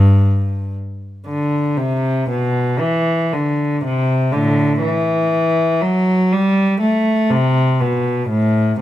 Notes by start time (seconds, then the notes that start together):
Already playing: G2
1.27 D3
1.78 C3
2.30 B2
2.80 E3
3.32 D3
3.85 C3
4.32 A2 D3
4.82 E3
5.81 F#3
6.32 G3
6.80 A3
7.30 C3
7.81 B2
8.29 A2